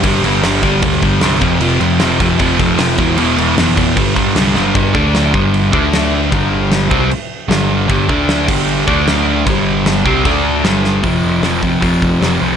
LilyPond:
<<
  \new Staff \with { instrumentName = "Distorted electric guitar" } { \clef bass \time 4/4 \key g \mixolydian \tempo 4 = 153 <g, d g>8 <g, d g>8 <g, d g>8 <g, d g>8 <g, d g>8 <g, d g>8 <g, d g>8 <f, c f>8 | <f, c f>8 <f, c f>8 <f, c f>8 <f, c f>8 <f, c f>8 <f, c f>8 <f, c f>8 <e, b, e>8 | <e, b, e>8 <e, b, e>8 <e, b, e>8 <e, b, e>8 <g, d g>8 <g, d g>8 <g, d g>8 <g, d g>8 | \key d \mixolydian <g, d g>8 <d a d'>4 <g, d g>4 <d a d'>4. |
<g, d g>4. <c g c'>8 r4 <g, d g>4 | <g, d g>8 <d a d'>4 <g, d g>4 <d a d'>4. | <g, d g>4. <c g c'>8 <d a d'>4 <g, d g>4 | \key f \lydian <f, c f>4 <f, c f>8 <f, c f>8 <f, c f>4 <f, c f>8 <f, c f>8 | }
  \new Staff \with { instrumentName = "Picked electric bass" } { \clef bass \time 4/4 \key g \mixolydian g,,8 g,,8 g,,4 d,8 g,,8 c,8 f,,8 | f,,8 f,,8 f,,8 f,,8 f,,8 f,,8 f,,8 e,,8 | e,,8 e,,8 f,,4 g,,8 g,,8 c,8 g,,8 | \key d \mixolydian g,,8 d,4 g,,4 d,4. |
g,,4. c,8 r4 g,,4 | g,,8 d,4 g,,4 d,4. | g,,4. c,8 d,4 g,,4 | \key f \lydian f,,8 f,,8 f,,4 f,,8 f,,8 f,,8 c,8 | }
  \new DrumStaff \with { instrumentName = "Drums" } \drummode { \time 4/4 <cymc bd>8 cymc8 <cymc sn>8 <cymc bd>8 <cymc bd>8 <cymc bd>8 <cymc sn>8 <cymc bd>8 | cymc8 cymc8 <cymc sn>8 <cymc bd>8 <cymc bd>8 <cymc bd>8 <cymc sn>8 <cymc bd>8 | cymc8 cymc8 <cymc sn>8 <cymc bd>8 <cymc bd>8 <cymc bd>8 <cymc sn>8 sn8 | <cymc bd>8 bd8 <cymc sn>8 bd8 cymc8 bd8 <cymc sn>4 |
<cymc bd>4 <cymc sn>8 bd8 cymc4 <cymc sn>4 | <cymc bd>8 bd8 <cymc sn>8 <cymc bd>8 cymc8 bd8 <cymc sn>4 | <cymc bd>4 <cymc sn>8 bd8 <cymc bd>4 <cymc sn>8 sn8 | <hho bd>4 <hho sn>8 bd8 <hho bd>8 bd8 <hho sn>4 | }
>>